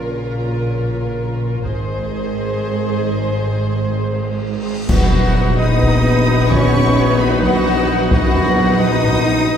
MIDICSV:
0, 0, Header, 1, 14, 480
1, 0, Start_track
1, 0, Tempo, 500000
1, 9191, End_track
2, 0, Start_track
2, 0, Title_t, "Violin section"
2, 0, Program_c, 0, 48
2, 0, Note_on_c, 0, 73, 37
2, 1540, Note_off_c, 0, 73, 0
2, 1582, Note_on_c, 0, 75, 54
2, 4467, Note_off_c, 0, 75, 0
2, 4697, Note_on_c, 0, 78, 97
2, 5328, Note_off_c, 0, 78, 0
2, 5362, Note_on_c, 0, 87, 100
2, 6229, Note_off_c, 0, 87, 0
2, 6248, Note_on_c, 0, 85, 108
2, 6907, Note_off_c, 0, 85, 0
2, 6909, Note_on_c, 0, 83, 94
2, 7122, Note_on_c, 0, 78, 110
2, 7127, Note_off_c, 0, 83, 0
2, 7767, Note_off_c, 0, 78, 0
2, 7791, Note_on_c, 0, 78, 107
2, 8438, Note_off_c, 0, 78, 0
2, 8455, Note_on_c, 0, 87, 117
2, 9191, Note_off_c, 0, 87, 0
2, 9191, End_track
3, 0, Start_track
3, 0, Title_t, "Trumpet section"
3, 0, Program_c, 1, 61
3, 4691, Note_on_c, 1, 66, 84
3, 5325, Note_off_c, 1, 66, 0
3, 5360, Note_on_c, 1, 75, 86
3, 6227, Note_off_c, 1, 75, 0
3, 6251, Note_on_c, 1, 73, 91
3, 6906, Note_on_c, 1, 71, 82
3, 6908, Note_off_c, 1, 73, 0
3, 7124, Note_on_c, 1, 66, 87
3, 7126, Note_off_c, 1, 71, 0
3, 7768, Note_off_c, 1, 66, 0
3, 7787, Note_on_c, 1, 66, 94
3, 8435, Note_off_c, 1, 66, 0
3, 8447, Note_on_c, 1, 75, 94
3, 9191, Note_off_c, 1, 75, 0
3, 9191, End_track
4, 0, Start_track
4, 0, Title_t, "Violin section"
4, 0, Program_c, 2, 48
4, 0, Note_on_c, 2, 70, 36
4, 1537, Note_off_c, 2, 70, 0
4, 1586, Note_on_c, 2, 72, 51
4, 4469, Note_off_c, 2, 72, 0
4, 4700, Note_on_c, 2, 66, 67
4, 4705, Note_on_c, 2, 71, 70
4, 9191, Note_off_c, 2, 66, 0
4, 9191, Note_off_c, 2, 71, 0
4, 9191, End_track
5, 0, Start_track
5, 0, Title_t, "French horn section"
5, 0, Program_c, 3, 60
5, 0, Note_on_c, 3, 49, 36
5, 0, Note_on_c, 3, 70, 39
5, 1535, Note_off_c, 3, 49, 0
5, 1536, Note_off_c, 3, 70, 0
5, 1584, Note_on_c, 3, 72, 54
5, 1585, Note_on_c, 3, 51, 51
5, 4440, Note_off_c, 3, 51, 0
5, 4478, Note_off_c, 3, 72, 0
5, 4696, Note_on_c, 3, 59, 73
5, 4702, Note_on_c, 3, 71, 74
5, 9191, Note_off_c, 3, 59, 0
5, 9191, Note_off_c, 3, 71, 0
5, 9191, End_track
6, 0, Start_track
6, 0, Title_t, "Viola section"
6, 0, Program_c, 4, 48
6, 0, Note_on_c, 4, 65, 36
6, 1541, Note_off_c, 4, 65, 0
6, 1589, Note_on_c, 4, 68, 49
6, 4471, Note_off_c, 4, 68, 0
6, 4701, Note_on_c, 4, 59, 72
6, 4702, Note_on_c, 4, 63, 71
6, 9191, Note_off_c, 4, 59, 0
6, 9191, Note_off_c, 4, 63, 0
6, 9191, End_track
7, 0, Start_track
7, 0, Title_t, "Cello section"
7, 0, Program_c, 5, 48
7, 0, Note_on_c, 5, 46, 38
7, 1539, Note_off_c, 5, 46, 0
7, 1574, Note_on_c, 5, 44, 58
7, 4463, Note_off_c, 5, 44, 0
7, 4698, Note_on_c, 5, 54, 82
7, 5328, Note_off_c, 5, 54, 0
7, 5362, Note_on_c, 5, 63, 83
7, 6244, Note_on_c, 5, 61, 89
7, 6246, Note_off_c, 5, 63, 0
7, 6891, Note_off_c, 5, 61, 0
7, 6907, Note_on_c, 5, 59, 82
7, 7126, Note_off_c, 5, 59, 0
7, 7126, Note_on_c, 5, 54, 79
7, 7769, Note_off_c, 5, 54, 0
7, 7786, Note_on_c, 5, 54, 89
7, 8435, Note_off_c, 5, 54, 0
7, 8457, Note_on_c, 5, 63, 99
7, 9191, Note_off_c, 5, 63, 0
7, 9191, End_track
8, 0, Start_track
8, 0, Title_t, "Trombone section"
8, 0, Program_c, 6, 61
8, 4695, Note_on_c, 6, 42, 70
8, 4697, Note_on_c, 6, 51, 69
8, 9191, Note_off_c, 6, 42, 0
8, 9191, Note_off_c, 6, 51, 0
8, 9191, End_track
9, 0, Start_track
9, 0, Title_t, "Double bass section"
9, 0, Program_c, 7, 48
9, 0, Note_on_c, 7, 34, 38
9, 1540, Note_off_c, 7, 34, 0
9, 1582, Note_on_c, 7, 32, 54
9, 4467, Note_off_c, 7, 32, 0
9, 4700, Note_on_c, 7, 34, 77
9, 9191, Note_off_c, 7, 34, 0
9, 9191, End_track
10, 0, Start_track
10, 0, Title_t, "Tuba"
10, 0, Program_c, 8, 58
10, 4689, Note_on_c, 8, 34, 70
10, 9191, Note_off_c, 8, 34, 0
10, 9191, End_track
11, 0, Start_track
11, 0, Title_t, "Cymbal swell"
11, 0, Program_c, 10, 119
11, 3118, Note_on_c, 10, 60, 39
11, 4696, Note_off_c, 10, 60, 0
11, 9191, End_track
12, 0, Start_track
12, 0, Title_t, "Impact"
12, 0, Program_c, 11, 103
12, 4694, Note_on_c, 11, 60, 71
12, 6247, Note_off_c, 11, 60, 0
12, 9191, End_track
13, 0, Start_track
13, 0, Title_t, "Taiko and cinematic ensemble drums"
13, 1589, Note_on_c, 9, 41, 48
13, 1685, Note_off_c, 9, 41, 0
13, 4697, Note_on_c, 9, 41, 98
13, 4793, Note_off_c, 9, 41, 0
13, 4920, Note_on_c, 9, 43, 53
13, 5016, Note_off_c, 9, 43, 0
13, 5585, Note_on_c, 9, 41, 75
13, 5681, Note_off_c, 9, 41, 0
13, 6249, Note_on_c, 9, 41, 98
13, 6345, Note_off_c, 9, 41, 0
13, 6471, Note_on_c, 9, 43, 55
13, 6567, Note_off_c, 9, 43, 0
13, 7128, Note_on_c, 9, 41, 77
13, 7224, Note_off_c, 9, 41, 0
13, 7787, Note_on_c, 9, 41, 100
13, 7883, Note_off_c, 9, 41, 0
13, 8010, Note_on_c, 9, 43, 53
13, 8106, Note_off_c, 9, 43, 0
13, 8674, Note_on_c, 9, 41, 79
13, 8770, Note_off_c, 9, 41, 0
13, 9191, End_track
14, 0, Start_track
14, 0, Title_t, "Drums"
14, 4693, Note_on_c, 9, 35, 75
14, 4693, Note_on_c, 9, 49, 70
14, 4789, Note_off_c, 9, 35, 0
14, 4789, Note_off_c, 9, 49, 0
14, 9191, End_track
0, 0, End_of_file